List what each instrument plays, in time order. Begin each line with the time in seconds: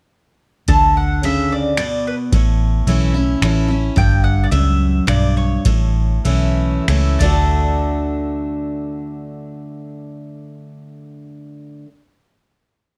0.68 fingered electric bass D2, steel-string acoustic guitar D3, mandolin A5, kick, ride
0.97 mandolin F#5
1.23 steel-string acoustic guitar C#3, mandolin E5, ride
1.52 mandolin D5
1.77 steel-string acoustic guitar B2, mandolin D5, finger snap, ride
2.07 mandolin B4
2.32 fingered electric bass A1, steel-string acoustic guitar A2, mandolin C#5, kick, ride
2.87 fingered electric bass B1, steel-string acoustic guitar E3 A3 C#4 E4, ride
3.14 steel-string acoustic guitar C#4 E4
3.42 fingered electric bass A1, steel-string acoustic guitar E3 A3 C#4 E4, finger snap, ride
3.68 steel-string acoustic guitar C#4 E4
3.96 fingered electric bass G1, steel-string acoustic guitar G2, mandolin G5, kick, ride
4.24 mandolin F#5
4.44 mandolin D5
4.51 fingered electric bass C#2, steel-string acoustic guitar F#2, mandolin E5, ride
5.07 fingered electric bass B1, steel-string acoustic guitar G2, mandolin D5, finger snap, ride
5.37 mandolin C#5
5.65 fingered electric bass A1, steel-string acoustic guitar A2, kick, ride
6.25 fingered electric bass B1, steel-string acoustic guitar E3 A3 C#4 E4, ride
6.88 fingered electric bass C#2, steel-string acoustic guitar E3 A3 C#4 E4, finger snap, ride
7.19 fingered electric bass D2, steel-string acoustic guitar D3 A3 D4, mandolin D5, kick, ride
7.24 steel-string acoustic guitar F#4